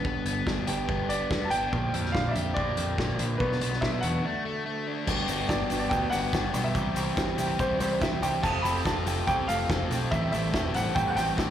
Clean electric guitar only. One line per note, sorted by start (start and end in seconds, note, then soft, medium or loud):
0.00 0.66 G2 medium
0.00 0.67 D3 medium
0.00 0.69 G3 medium
0.00 0.67 B3 medium
0.00 0.68 D4 medium
0.00 0.67 G4 medium
0.67 1.52 G2 medium
0.67 1.51 D3 medium
0.67 1.51 G3 medium
0.67 1.51 B3 medium
0.67 1.75 D4 medium
0.67 1.50 G4 medium
1.72 2.55 A#2 medium
1.72 2.56 D3 medium
1.72 2.56 F3 medium
1.72 2.56 A#3 loud
1.72 2.58 D4 medium
1.72 2.57 G4 loud
2.56 3.39 A#2 medium
2.56 3.39 D3 medium
2.56 3.40 F3 medium
2.56 3.40 A#3 medium
2.56 3.41 D4 medium
2.56 3.40 G4 medium
3.39 4.22 B2 medium
3.39 4.22 F#3 medium
3.39 4.23 B3 medium
3.39 4.23 D4 loud
3.39 4.24 F#4 medium
4.23 5.06 D3 medium
4.23 5.06 A3 medium
4.23 5.06 D4 loud
4.23 5.07 F#4 medium
5.07 5.28 G3 medium
5.07 5.28 B3 medium
5.07 5.28 D4 loud
5.07 5.29 F#4 loud
5.29 5.49 G3 medium
5.29 5.48 B3 medium
5.29 5.49 D4 medium
5.29 5.49 F#4 medium
5.49 5.70 G3 medium
5.49 5.69 B3 medium
5.49 5.70 D4 medium
5.49 5.70 F#4 medium
5.70 5.91 G3 medium
5.70 5.90 B3 medium
5.70 5.91 D4 medium
5.70 5.91 F#4 loud
5.91 6.11 G3 medium
5.91 6.11 B3 medium
5.91 6.12 D4 medium
5.91 6.12 F#4 loud
6.12 6.32 G3 medium
6.12 6.32 B3 medium
6.12 6.33 D4 medium
6.12 6.33 F#4 medium
6.33 6.53 G3 medium
6.33 6.53 B3 medium
6.33 6.54 D4 medium
6.33 6.55 F#4 loud
6.54 6.75 G3 medium
6.54 6.74 B3 medium
6.54 6.74 D4 medium
6.54 6.75 F#4 medium
6.74 6.94 C3 loud
6.74 6.94 E3 medium
6.74 6.96 G3 loud
6.74 6.96 C4 loud
6.74 6.97 G4 loud
6.95 7.15 C3 medium
6.95 7.16 E3 medium
6.95 7.17 G3 medium
6.95 7.17 C4 medium
6.95 7.18 G4 medium
7.16 7.36 C3 medium
7.16 7.36 E3 medium
7.16 7.38 G3 loud
7.16 7.38 C4 medium
7.16 7.39 G4 medium
7.37 7.57 C3 medium
7.37 7.58 E3 medium
7.37 7.59 G3 medium
7.37 7.60 C4 medium
7.37 7.60 G4 medium
7.58 7.78 C3 medium
7.58 7.79 E3 loud
7.58 7.80 G3 loud
7.58 7.80 C4 loud
7.58 7.81 G4 loud
7.80 7.99 C3 medium
7.80 8.00 E3 medium
7.80 8.01 G3 medium
7.80 8.02 C4 medium
7.80 8.02 G4 medium
8.00 8.20 C3 medium
8.00 8.20 E3 medium
8.00 8.21 G3 loud
8.00 8.22 C4 medium
8.00 8.23 G4 medium
8.21 8.41 C3 medium
8.21 8.42 E3 medium
8.21 8.43 G3 medium
8.21 8.43 C4 medium
8.21 8.44 G4 medium
8.42 8.62 F3 medium
8.42 8.64 A3 loud
8.42 8.64 C4 medium
8.42 8.65 G4 loud
8.63 8.84 F3 medium
8.63 8.85 A3 medium
8.63 8.85 C4 medium
8.63 8.86 G4 loud
8.85 9.04 F3 medium
8.85 9.06 A3 loud
8.85 9.06 C4 loud
8.85 9.07 G4 loud
9.05 9.26 F3 medium
9.05 9.26 A3 medium
9.05 9.27 C4 medium
9.05 9.28 G4 loud
9.27 9.47 F3 medium
9.27 9.48 A3 medium
9.27 9.48 C4 loud
9.27 9.49 G4 loud
9.48 9.67 F3 medium
9.48 9.68 A3 medium
9.48 9.68 C4 loud
9.48 9.70 G4 medium
9.69 9.88 F3 medium
9.69 9.89 A3 medium
9.69 9.90 C4 medium
9.69 9.91 G4 medium
9.90 10.10 F3 medium
9.90 10.10 A3 medium
9.90 10.10 C4 medium
9.90 10.12 G4 medium
10.11 10.32 A2 medium
10.11 10.32 E3 medium
10.11 10.33 G3 loud
10.11 10.33 C4 loud
10.11 10.34 G4 loud
10.33 10.52 A2 medium
10.33 10.53 E3 medium
10.33 10.54 G3 medium
10.33 10.54 C4 medium
10.33 10.55 G4 loud
10.54 10.74 A2 medium
10.54 10.74 E3 medium
10.54 10.75 G3 medium
10.54 10.75 C4 loud
10.54 10.76 G4 loud
10.75 10.94 A2 medium
10.75 10.95 E3 medium
10.75 10.96 G3 medium
10.75 10.96 C4 medium
10.75 10.97 G4 loud
10.95 11.15 A2 medium
10.95 11.16 E3 loud
10.95 11.17 G3 medium
10.95 11.17 C4 loud
10.95 11.18 G4 loud
11.16 11.37 A2 medium
11.16 11.37 E3 medium
11.16 11.39 G3 medium
11.16 11.38 C4 medium
11.16 11.39 G4 medium
11.38 11.50 A2 medium
11.38 11.50 E3 medium
11.38 11.50 G3 medium
11.38 11.50 C4 medium
11.38 11.50 G4 medium